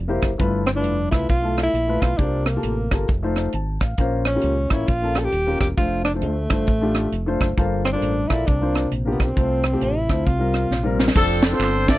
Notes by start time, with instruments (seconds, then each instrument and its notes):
Already playing: fingered electric bass F1
0.08 grand piano A#3 E4 G4 C5
0.22 fingered electric bass F#1, kick, cross-stick, closed hi-hat
0.38 fingered electric bass G1, grand piano G2 A3 E4 F4 B4, kick, closed hi-hat
0.66 tenor saxophone C4, cross-stick, closed hi-hat
0.75 grand piano A3 E4 F4 B4, tenor saxophone D4
0.84 fingered electric bass F1, closed hi-hat
1.11 fingered electric bass C2, grand piano A3 E4 F4 B4, tenor saxophone E4, kick, cross-stick, closed hi-hat
1.29 fingered electric bass B1, tenor saxophone F4, kick, closed hi-hat
1.42 grand piano A3 E4 F4 A4
1.57 cross-stick, closed hi-hat
1.63 tenor saxophone E4
1.73 fingered electric bass A#1, closed hi-hat
1.87 grand piano A3 E4 F4 B4
2.01 fingered electric bass B1, tenor saxophone F4, kick, cross-stick, closed hi-hat
2.17 fingered electric bass C2, grand piano C3 A#3 F4 G4 C5, tenor saxophone D4, kick, closed hi-hat
2.45 tenor saxophone A#3, cross-stick, closed hi-hat
2.55 grand piano A#3 F4 G4 A4
2.63 fingered electric bass A1, closed hi-hat
2.91 fingered electric bass G1, grand piano A#3 F4 G4 A4, kick, cross-stick, closed hi-hat
3.08 fingered electric bass F1, kick, closed hi-hat
3.23 grand piano A3 D#4 F4 C5
3.36 cross-stick, closed hi-hat
3.52 fingered electric bass G#1, grand piano A5, closed hi-hat
3.80 fingered electric bass A1, grand piano F5, kick, cross-stick, closed hi-hat
3.97 fingered electric bass A#1, grand piano A#2 A#3 C#4 F4 C5, kick, closed hi-hat
4.25 tenor saxophone C#4, cross-stick, closed hi-hat
4.35 grand piano A#3 C#4 F4 G4
4.41 fingered electric bass C#2, closed hi-hat
4.70 fingered electric bass A1, grand piano A#3 C#4 F4 C#5, tenor saxophone E4, kick, cross-stick, closed hi-hat
4.87 fingered electric bass A#1, tenor saxophone F4, kick, closed hi-hat
5.02 grand piano A#3 C#4 F4 A4
5.15 tenor saxophone A4, cross-stick, closed hi-hat
5.24 tenor saxophone G4
5.32 fingered electric bass D#1, closed hi-hat
5.47 grand piano A#3 C#4 F4 G4
5.60 fingered electric bass E1, tenor saxophone G4, kick, cross-stick, closed hi-hat
5.77 fingered electric bass F1, grand piano A3 D4 F4 C5, tenor saxophone F4, kick, closed hi-hat
6.04 tenor saxophone D4, cross-stick, closed hi-hat
6.14 grand piano A3 D4 F4 C5
6.22 fingered electric bass D2, tenor saxophone A3, closed hi-hat
6.50 fingered electric bass G1, grand piano A3 D4 F4 C5, kick, cross-stick, closed hi-hat
6.67 fingered electric bass A1, kick, closed hi-hat
6.81 grand piano A3 D4 F4 G4
6.94 cross-stick, closed hi-hat
7.12 fingered electric bass F1, closed hi-hat
7.26 grand piano A3 D4 F4 C5
7.41 fingered electric bass F#1, kick, cross-stick, closed hi-hat
7.57 fingered electric bass G1, grand piano G2 A#3 F4 A4 C5, kick, closed hi-hat
7.85 tenor saxophone C4, cross-stick, closed hi-hat
7.93 grand piano A#3 F4 A4 C5, tenor saxophone D4
8.01 fingered electric bass A1, closed hi-hat
8.28 fingered electric bass A#1, grand piano A#3 F4 A4 D5, tenor saxophone E4, kick, cross-stick, closed hi-hat
8.46 fingered electric bass C2, grand piano C3, tenor saxophone D4, kick, closed hi-hat
8.61 grand piano A#3 D4 F4 C5
8.75 cross-stick, closed hi-hat
8.92 fingered electric bass A#1, closed hi-hat
9.05 grand piano A#3 D4 F4 G4
9.11 tenor saxophone B3
9.19 fingered electric bass B1, kick, cross-stick, closed hi-hat
9.24 tenor saxophone C4
9.36 fingered electric bass C2, grand piano C3 A3 C4 F4 C5, kick, closed hi-hat
9.63 cross-stick, closed hi-hat
9.72 grand piano A3 C4 F4 G4
9.81 fingered electric bass A1, tenor saxophone E4, closed hi-hat
10.09 fingered electric bass D2, grand piano A3 C4 F4 C5, kick, cross-stick, closed hi-hat
10.26 fingered electric bass C2, grand piano C3, tenor saxophone F4, kick, closed hi-hat
10.39 grand piano G3 C4 F4 A#4
10.53 cross-stick, closed hi-hat
10.70 fingered electric bass A#1, snare
10.83 grand piano G3 C4 F4 A#4
10.99 snare
11.08 snare
11.14 fingered electric bass F1, grand piano C4 D4 F4 A4 D5, horn section C4 D4 A4, kick, crash, tambourine
11.42 snare, ride, tambourine
11.50 grand piano C4 D4 F4 A4 C5, horn section A4 C5
11.59 fingered electric bass G1, clap, ride, tambourine
11.87 grand piano C4 D4 F4 A4 E5, horn section D5, kick, snare, ride, tambourine